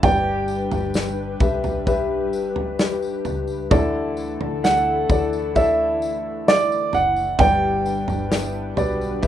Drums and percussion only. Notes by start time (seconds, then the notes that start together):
0.03 kick, floor tom, tambourine
0.48 tambourine
0.71 floor tom, tambourine
0.94 snare, tambourine
1.40 kick, floor tom, tambourine
1.64 floor tom, tambourine
1.87 kick, floor tom, tambourine
2.33 tambourine
2.56 floor tom
2.79 snare, tambourine
3.02 tambourine
3.25 floor tom, tambourine
3.47 tambourine
3.71 kick, floor tom, tambourine
4.17 tambourine
4.41 floor tom
4.64 snare, tambourine
5.10 kick, floor tom, tambourine
5.33 tambourine
5.56 kick, floor tom, tambourine
6.02 tambourine
6.48 snare, tambourine
6.72 tambourine
6.93 floor tom, tambourine
7.16 tambourine
7.39 kick, floor tom, tambourine
7.86 tambourine
8.08 floor tom, tambourine
8.32 snare, tambourine
8.77 floor tom, tambourine
9.01 tambourine
9.23 kick, floor tom, tambourine